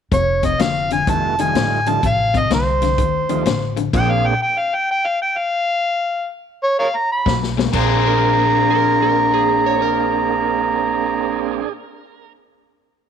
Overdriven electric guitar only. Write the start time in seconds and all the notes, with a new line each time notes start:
0.12 F2 C3
0.43 F2 C3
0.60 F2 D3
0.92 F2 D3
1.09 F2 D#3
1.40 F2 D#3
1.56 F2 D3
1.87 F2 D3
2.03 F2 C3
2.34 F2 C3
2.50 F2 D3
2.82 F2 D3
2.98 F2 D#3
3.29 F2 D#3
3.46 F2 D3
3.76 F2 D3
3.94 A#2 F3
7.26 B2 F#3
7.57 B2 G#3
7.73 A#3 D4 G#4 C5